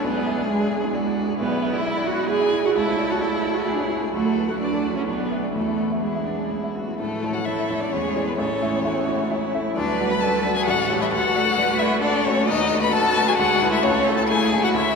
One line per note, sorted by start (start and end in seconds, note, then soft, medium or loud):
0.02 1.36 B1 medium
0.02 2.73 G#3 medium
0.02 0.48 B3 medium
0.02 0.96 G#4 medium
0.02 0.48 B4 medium
0.16 0.34 D5 soft
0.27 0.38 E5 soft
0.38 0.56 D5 medium
0.48 0.93 G#3 medium
0.48 0.93 G#4 medium
0.48 0.61 E5 soft
0.61 0.79 D5 medium
0.71 0.90 D4 medium
0.84 0.95 E4 soft
0.94 1.12 D4 medium
0.94 1.38 F#4 medium
1.06 1.24 D5 medium
1.18 1.36 D4 medium
1.28 1.39 G#4 medium
1.39 2.73 B1 medium
1.39 1.75 B3 medium
1.39 2.73 E4 medium
1.39 1.71 B4 medium
1.51 1.69 D5 medium
1.62 1.74 E5 soft
1.73 2.09 E4 medium
1.73 1.92 D5 medium
1.73 2.09 E5 medium
1.85 1.96 E5 soft
1.96 2.14 D5 medium
2.07 2.26 E4 soft
2.07 2.29 F#4 loud
2.07 2.30 F#5 medium
2.19 2.31 F#4 medium
2.29 2.49 E4 medium
2.29 2.64 G#4 medium
2.29 2.67 G#5 medium
2.42 2.60 D5 medium
2.53 2.72 E4 medium
2.65 2.70 F#4 medium
2.65 2.77 G#4 soft
2.65 2.77 F#5 medium
2.76 4.09 C#2 medium
2.76 4.11 A3 medium
2.76 3.13 E4 medium
2.76 3.70 A4 medium
2.76 3.12 E5 medium
2.87 3.06 C#5 medium
2.99 3.10 D5 soft
3.10 3.23 F#4 medium
3.10 3.28 C#5 soft
3.10 3.23 F#5 medium
3.21 3.56 E4 medium
3.21 3.33 D5 soft
3.21 3.91 E5 medium
3.33 3.52 C#5 medium
3.44 3.63 E4 soft
3.54 3.66 F#4 medium
3.54 3.68 F#4 soft
3.65 3.75 E4 medium
3.65 3.86 E4 soft
3.65 4.13 G#4 medium
3.73 3.84 D4 medium
3.79 3.97 C#5 medium
3.83 3.91 E4 medium
3.90 4.09 E4 soft
4.02 4.14 A4 soft
4.14 5.04 D2 medium
4.14 5.57 F#3 medium
4.14 4.51 A3 medium
4.14 4.59 F#4 medium
4.14 4.50 A4 medium
4.25 4.44 A4 soft
4.37 4.49 B4 soft
4.48 4.60 F#4 medium
4.48 4.67 A4 soft
4.48 4.60 F#5 medium
4.60 4.95 D4 medium
4.60 5.06 F#4 medium
4.60 4.72 B4 soft
4.60 4.95 D5 medium
4.72 4.91 A4 soft
4.84 5.03 D4 soft
4.95 5.07 C#4 medium
4.95 5.07 E4 soft
4.95 5.01 C#5 medium
5.07 5.54 B1 soft
5.07 5.45 B3 medium
5.07 5.54 D4 soft
5.07 5.45 B4 medium
5.20 5.38 D5 soft
5.32 5.43 E5 soft
5.43 5.53 A3 medium
5.43 5.54 A4 soft
5.43 5.55 D5 soft
5.54 6.95 E2 soft
5.54 6.79 E3 soft
5.54 6.04 A3 medium
5.54 5.98 E4 soft
5.54 6.02 A4 medium
5.68 5.87 E5 soft
5.80 5.92 F#5 soft
5.92 6.11 E5 soft
6.02 6.75 G#3 soft
6.02 6.28 E4 medium
6.02 6.74 G#4 soft
6.02 6.16 F#5 soft
6.15 6.34 E5 soft
6.26 6.47 B3 soft
6.26 6.52 D4 soft
6.39 6.51 C#4 soft
6.50 6.71 B3 soft
6.50 6.77 E4 medium
6.64 6.83 E5 soft
6.75 6.95 B3 soft
6.75 6.99 F#4 medium
6.88 7.00 E4 soft
6.98 7.22 A2 medium
6.98 7.88 E3 medium
6.98 7.35 A3 medium
6.98 7.35 A4 medium
7.23 7.44 A3 soft
7.23 7.44 E4 soft
7.23 7.45 C#5 medium
7.33 7.45 F#4 medium
7.33 7.47 F#5 medium
7.45 7.67 A3 soft
7.45 7.81 E4 medium
7.45 7.67 E4 medium
7.45 7.89 A4 medium
7.45 7.67 C#5 medium
7.45 7.82 E5 medium
7.70 7.90 A3 soft
7.70 7.90 E4 medium
7.70 7.91 C#5 medium
7.80 7.90 D4 medium
7.80 7.93 D5 medium
7.91 8.15 E2 medium
7.91 8.35 G#3 medium
7.91 8.28 C#4 medium
7.91 8.37 G#4 medium
7.91 8.29 C#5 medium
8.16 8.36 G#3 medium
8.16 8.36 E4 medium
8.16 8.37 D5 medium
8.27 8.37 B3 medium
8.27 8.37 B4 medium
8.37 8.61 A1 medium
8.37 9.72 A3 medium
8.37 9.50 C#4 medium
8.37 8.83 A4 medium
8.37 9.50 C#5 medium
8.62 8.82 A3 medium
8.62 8.83 E4 medium
8.62 8.83 E5 medium
8.84 9.05 A3 medium
8.84 9.05 E4 medium
8.84 9.32 F#4 medium
8.84 9.05 E5 medium
9.08 9.28 A3 soft
9.08 9.28 E4 medium
9.08 9.29 E5 medium
9.30 9.51 A3 medium
9.30 9.75 E4 medium
9.30 9.51 E4 medium
9.30 9.51 E5 medium
9.54 9.74 A3 medium
9.54 9.74 E4 medium
9.54 9.74 E5 medium
9.75 9.98 D2 medium
9.75 10.62 F#3 medium
9.75 10.08 D4 medium
9.75 10.69 B4 loud
9.75 10.12 D5 medium
9.99 10.20 A3 medium
9.99 10.20 F#4 medium
9.99 10.20 D5 medium
10.10 10.15 B4 medium
10.10 10.22 B5 loud
10.20 10.42 A3 medium
10.20 10.42 F#4 medium
10.20 10.58 A4 medium
10.20 10.43 D5 medium
10.20 10.55 A5 medium
10.45 10.65 A3 medium
10.45 10.65 F#4 medium
10.45 10.66 D5 medium
10.55 10.69 G#4 loud
10.55 10.66 G#5 loud
10.66 10.89 A1 medium
10.66 11.09 G3 medium
10.66 11.03 F#4 medium
10.66 11.60 A4 medium
10.66 11.00 F#5 loud
10.90 11.10 A3 medium
10.90 11.10 G4 medium
10.90 11.10 C#5 medium
11.01 11.12 E4 medium
11.01 11.06 E5 loud
11.12 11.34 D2 medium
11.12 13.35 A3 medium
11.12 11.80 F#4 loud
11.12 11.81 F#5 loud
11.35 11.55 A3 medium
11.35 11.55 F#4 medium
11.35 11.55 D5 medium
11.58 11.78 A3 medium
11.58 11.78 F#4 medium
11.58 12.04 B4 loud
11.58 11.78 D5 medium
11.78 12.01 A3 medium
11.78 12.01 E4 loud
11.78 12.01 F#4 medium
11.78 12.01 D5 medium
11.78 12.01 E5 loud
12.01 12.24 A3 medium
12.01 12.26 D4 loud
12.01 12.24 F#4 medium
12.01 12.48 A4 medium
12.01 12.27 D5 loud
12.01 12.24 D5 medium
12.24 12.47 A3 medium
12.24 12.50 C#4 loud
12.24 12.47 F#4 medium
12.24 12.47 C#5 loud
12.24 12.47 D5 medium
12.48 12.70 D#2 medium
12.48 12.81 D#4 loud
12.48 13.41 F#4 loud
12.48 12.81 D#5 loud
12.72 12.92 A3 medium
12.72 12.92 F#4 medium
12.72 12.92 B4 medium
12.82 12.92 B4 medium
12.82 12.94 B5 loud
12.93 13.14 A3 medium
12.93 13.14 F#4 medium
12.93 13.28 A4 loud
12.93 13.14 B4 medium
12.93 13.30 A5 loud
13.17 13.37 A3 medium
13.17 13.37 F#4 medium
13.17 13.37 B4 medium
13.27 13.38 G#4 loud
13.27 13.37 G#5 loud
13.38 13.61 D2 medium
13.38 13.81 G#3 medium
13.38 13.73 F#4 loud
13.38 13.84 G#4 medium
13.38 13.72 F#5 loud
13.62 13.82 G#3 medium
13.62 13.83 E4 medium
13.62 13.83 B4 medium
13.72 13.83 E4 medium
13.72 13.85 E5 loud
13.83 14.07 C#2 medium
13.83 14.95 A3 medium
13.83 14.19 C#4 loud
13.83 14.29 A4 medium
13.83 14.17 C#5 loud
14.08 14.28 A3 medium
14.08 14.28 E4 medium
14.08 14.28 A4 medium
14.17 14.28 A4 medium
14.17 14.22 A5 loud
14.28 14.51 A3 medium
14.28 14.95 E4 medium
14.28 14.51 E4 medium
14.28 14.65 G#4 loud
14.28 14.51 A4 medium
14.28 14.62 G#5 loud
14.53 14.73 A3 medium
14.53 14.73 E4 medium
14.53 14.73 A4 medium
14.63 14.76 F#4 loud
14.63 14.68 F#5 loud
14.74 14.95 D2 medium
14.74 14.95 E4 loud
14.74 14.95 E5 loud